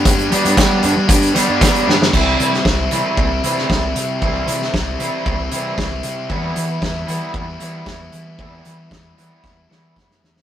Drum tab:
CC |----------------|x---------------|----------------|----------------|
HH |xxxxx-x-xxx-xx--|--x---x---x---x-|--x---x---x---x-|--x---x---x---x-|
SD |----o-------o-oo|---oo------oo---|---oo-------o---|----o-------o---|
BD |o---o---o---o---|o---o---o---o---|o---o---o---o---|o---o---o---o---|

CC |----------------|
HH |--x---x---------|
SD |----o---o-o-oooo|
BD |o---o---o---o---|